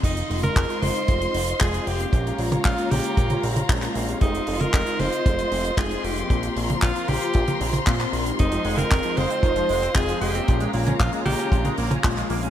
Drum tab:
CC |x---------------|----------------|----------------|----------------|
HH |xxoxxxoxxxoxxxox|xxoxxxoxxxoxxxox|xxoxxxoxxxoxxxox|xxoxxxoxxxoxxxox|
CP |----x-------x---|----x-------xx--|----x-------x---|----x-------xx--|
T1 |---o--o---------|---o--o--o-o----|---o--o---------|---o--o--o-o----|
BD |o---o---o---o---|o---o---o---o---|o---o---o---o---|o---o---o---o---|

CC |----------------|----------------|
HH |xxoxxxoxxxoxxxox|xxoxxxoxxxoxxxox|
CP |----x-------x---|----x-------xx--|
T1 |---o--o---------|---o--o--o-o----|
BD |o---o---o---o---|o---o---o---o---|